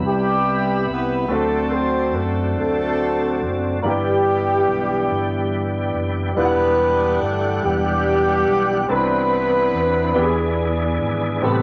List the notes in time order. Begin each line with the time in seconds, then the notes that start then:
Already playing: C3 G3 B3 E4 B4
0.04 C2 G3 B3 E4 G4
0.88 C2 B3 B4
1.28 D2 D3 F#3 A3 C4 D4 F#4 A4
1.33 A3 C4 F#4 A4
1.73 C4 C5
2.15 F#2 A3 A4
2.57 D2 A3 C4 F#4 A4
3.41 F#1
3.82 G1 G2 E3 G3 A#3 B3 D4 E4 F#4 G4
3.89 B3 G4
4.68 B1
5.11 G1
5.94 F#1
6.35 E1 E3 G3 B3 D4 E4 F4 B4 F#5
6.39 D4 G4
6.45 F#5
7.21 G1 A3 A4
7.63 E1 G3 B3 D4 G4
8.47 B1
8.88 C2 C3 E3 B3 C4 D4 E4 A4 B4
8.93 D4 E4 B4
9.74 E2
10.14 E2 E3 B3 D4 E4 G4
10.22 G#4
11.00 G#1
11.41 A1 A2 C3 G3 B3 C4 G4 A4 B4
11.45 E4 G4